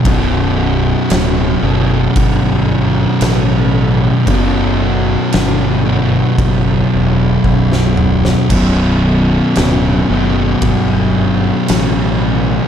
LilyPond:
<<
  \new Staff \with { instrumentName = "Distorted electric guitar" } { \clef bass \time 4/4 \key c \lydian \tempo 4 = 57 <b,, fis, b,>4. <b,, fis, b,>2~ <b,, fis, b,>8 | <b,, fis, b,>4. <b,, fis, b,>2~ <b,, fis, b,>8 | <b,, fis, b,>4. <b,, fis, b,>2~ <b,, fis, b,>8 | }
  \new Staff \with { instrumentName = "Fingered electric bass" } { \clef bass \time 4/4 \key c \lydian b,,,4 d,,8 fis,,8 g,,4 a,,4 | fis,,4 g,,4 fis,,8 e,,8 b,,,4 | b,,,4 d,,8 fis,,8 g,,4 a,,4 | }
  \new DrumStaff \with { instrumentName = "Drums" } \drummode { \time 4/4 <cymc bd>4 <cymc sn>4 <cymc bd>4 <cymc sn>4 | <cymc bd>4 <cymc sn>4 <cymc bd>4 bd16 sn16 toml16 sn16 | <cymc bd>4 <cymc sn>4 <cymc bd>4 <cymc sn>4 | }
>>